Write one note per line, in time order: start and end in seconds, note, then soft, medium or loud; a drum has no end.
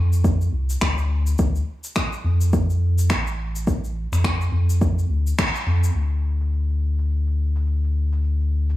0.00 0.49 F2 medium
0.13 shaker medium
0.24 kick medium
0.24 shaker medium
0.41 shaker soft
0.53 0.76 C2 loud
0.70 shaker medium
0.81 1.34 D2 loud
0.81 finger snap medium
0.81 kick loud
0.81 shaker soft
0.98 shaker soft
1.27 shaker medium
1.38 1.62 D2 medium
1.38 kick loud
1.38 shaker medium
1.56 shaker soft
1.84 shaker medium
1.96 finger snap loud
1.96 kick medium
1.96 shaker medium
2.13 shaker soft
2.24 3.12 F2 medium
2.41 shaker medium
2.53 kick loud
2.53 shaker soft
2.70 shaker soft
2.98 shaker medium
3.10 4.07 A1 medium
3.10 finger snap medium
3.10 kick loud
3.10 shaker medium
3.27 shaker soft
3.56 shaker medium
3.67 kick loud
3.67 shaker medium
3.84 shaker soft
4.12 4.49 F2 medium
4.12 finger snap soft
4.12 shaker medium
4.24 finger snap medium
4.24 kick loud
4.24 shaker soft
4.41 shaker soft
4.52 5.05 F2 medium
4.70 shaker medium
4.81 kick medium
4.81 shaker medium
4.99 shaker soft
5.09 5.33 D2 medium
5.27 shaker medium
5.39 finger snap medium
5.39 kick loud
5.39 shaker soft
5.55 shaker soft
5.67 5.90 F2 loud
5.84 shaker medium
5.95 8.77 D2 medium
5.95 shaker soft
6.13 shaker soft
6.41 shaker medium
6.53 shaker soft
6.70 shaker soft
6.98 shaker medium
7.10 shaker soft
7.27 shaker soft
7.56 shaker medium
7.67 shaker soft
7.84 shaker soft
8.12 shaker medium
8.24 shaker soft
8.40 shaker soft
8.69 shaker medium